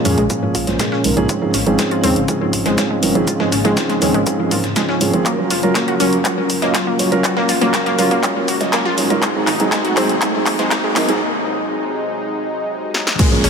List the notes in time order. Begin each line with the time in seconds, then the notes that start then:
Already playing: C#3 G#3 A#3 F4, riser
0.05 F2 A#2 F3 A#3 C#4 G#4, open hi-hat, shaker
0.18 A#1 G#3, closed hi-hat
0.30 A#2 F3 A#3 C#4 G#4, kick, closed hi-hat, shaker
0.42 A#2 F3 A#3 C#4 G#4
0.55 A#1 F4, kick, open hi-hat, shaker
0.67 A#1 A#2 F3 A#3 C#4 C5, snare, closed hi-hat
0.79 A#2 F3 G#3 A#3 C#4 G#4, kick, snare, closed hi-hat, shaker
0.92 C#4, snare
1.04 A#1 G#2 F3 A#3 C#4 A#4, open hi-hat, shaker
1.17 A#1 G#2 F3 A#3 C#4 G#4, closed hi-hat
1.29 G#2 F3 G#3 C4 C#4, kick, closed hi-hat, shaker
1.42 G#2 F3 C4 C#4 G#4
1.54 G#1 C#4, snare, open hi-hat, shaker
1.66 G#1 G#2 F3 C4 C#4 G#4, closed hi-hat
1.79 G#2 F3 G#3 C4 C#4 G#4, kick, snare, closed hi-hat, shaker
1.91 F4, closed hi-hat
2.03 D#2 G#2 F3 C4 C#4 G#4, open hi-hat, shaker
2.16 G#1, closed hi-hat
2.28 G#2 F3 C4 C#4 G#4, kick, closed hi-hat, shaker
2.41 G#2 F3 C4 C#4 G#4
2.53 G#1, kick, open hi-hat, shaker
2.65 G#1 G#2 F3 G#3 C4 C#4 C5, snare, closed hi-hat
2.78 G#2 F3 C4 C#4 G#4, kick, snare, closed hi-hat, shaker
2.90 G#3
3.03 G#1 G#2 F3 C4 C#4 A#4, open hi-hat, shaker
3.15 G#1 G#2 F3 C4 C#4 G#4, closed hi-hat
3.27 G#2 F3 A#3 C4 C#4 F4, kick, closed hi-hat, shaker
3.40 G#2 F3 G#3 C4 C#4 G#4, snare
3.52 G#1 C#4, snare, open hi-hat, shaker
3.65 G#1 G#2 F3 G#3 C4 C#4 G#4, snare, closed hi-hat
3.77 G#2 F3 C4 C#4 F4, kick, snare, closed hi-hat, shaker
3.89 G#3, snare, closed hi-hat
4.02 D#2 G#2 F3 C4 C#4 G#4, open hi-hat, shaker
4.14 G#1 G#3, closed hi-hat
4.26 G#2 F3 C4 C#4 G#4, kick, closed hi-hat, shaker
4.39 G#2 F3 C4 C#4 G#4
4.51 G#2 F3 C4 C#4 F4 A#4, kick, open hi-hat, shaker
4.64 G#2, snare, closed hi-hat
4.76 G#2 F3 G#3 C4 C#4 F4, kick, snare, closed hi-hat, shaker
4.89 C#4, snare
5.01 G#2 F3 C4 C#4 G#4, open hi-hat, shaker
5.13 G#1 F3 C4 C#4 G#4, closed hi-hat
5.26 F#3 A#3 C#4 A#4, kick, clap, closed hi-hat, shaker
5.38 F#3 C#4 F4 A#4
5.50 F#1 F4, snare, open hi-hat, shaker
5.63 F#1 F#3 C#4 F4 A#4, closed hi-hat
5.75 F#3 A#3 C#4 F4, kick, snare, clap, closed hi-hat, shaker
5.88 F#4, closed hi-hat
6.00 C#2 F#3 C#4 F4 A#4, open hi-hat, shaker
6.13 F#1, closed hi-hat
6.25 F#3 C#4 F4 A#4, kick, clap, closed hi-hat, shaker
6.37 F#3 C#4 F4 A#4
6.50 F#1, kick, open hi-hat, shaker
6.62 F#1 F#3 A#3 C#4 F4 D#5, snare, closed hi-hat
6.74 F#3 F4 A#4, kick, snare, clap, closed hi-hat, shaker
6.87 A#3
6.99 F#1 F#3 C#4 F4 C#5, open hi-hat, shaker
7.12 F#1 F#3 C#4 F4 A#4, closed hi-hat
7.24 F#3 F#4, kick, clap, closed hi-hat, shaker
7.37 F#3 A#3 C#4 F4 A#4, snare
7.49 F#1 F4, snare, open hi-hat, shaker
7.61 F#1 F#3 A#3 C#4 F4 A#4, snare, closed hi-hat
7.74 F#3 C#4 F4 F#4 A#4, kick, snare, clap, closed hi-hat, shaker
7.86 A#3, snare, closed hi-hat
7.98 C#2 F#3 C#4 F4 A#4, open hi-hat, shaker
8.11 F#1 A#3, closed hi-hat
8.23 F#3 C#4 F4 A#4, kick, clap, closed hi-hat, shaker
8.36 F#3 C#4 F4 A#4
8.48 F#1 F#4, kick, open hi-hat, shaker
8.61 F#1 F#3 C#4 F4 D#5, snare, closed hi-hat
8.73 F#3 A#3 C#4 F4 A#4, kick, snare, clap, closed hi-hat, shaker
8.85 F4, snare
8.98 F#1 G#2 F#3 C#4 F4 C#5, open hi-hat, shaker
9.10 F#1 G#2 F#3 C#4 F4 A#4, closed hi-hat
9.22 G#2 C3 F#3 G#3 C4 D#4 G#4, kick, clap, closed hi-hat, shaker
9.35 G#2 F#3 C4 D#4 G#4
9.47 G#1 D#4, snare, clap, open hi-hat, shaker
9.60 G#1 G#2 F#3 C4 D#4 G#4, closed hi-hat
9.72 G#2 F#3 G#3 C4 D#4 G#4, kick, snare, clap, closed hi-hat, shaker
9.85 F#4, closed hi-hat
9.97 D#2 G#2 F#3 C4 D#4 G#4, clap, open hi-hat, shaker
10.09 G#1, closed hi-hat
10.22 G#2 F#3 C4 D#4 G#4, kick, clap, closed hi-hat, shaker
10.34 G#2 F#3 C4 D#4 G#4
10.46 G#1, kick, clap, open hi-hat, shaker
10.59 G#1 G#2 F#3 G#3 C4 D#4 C5, snare, closed hi-hat
10.71 G#2 F#3 C4 D#4 G#4, kick, snare, clap, closed hi-hat, shaker
10.84 G#3
10.96 G#1 G#2 F#3 C4 D#4 A#4, snare, clap, open hi-hat, shaker
11.09 G#1 G#2 F#3 C4 D#4 G#4, snare, closed hi-hat
12.94 snare
13.07 snare
13.19 A#2 C#3 F3 G#3 A#3 C#4 F4 G#4, kick, closed hi-hat, crash, downlifter, shaker
13.32 A#2 F3 A#3 C#4 G#4
13.44 A#1 C#4, cross-stick, snare, open hi-hat, shaker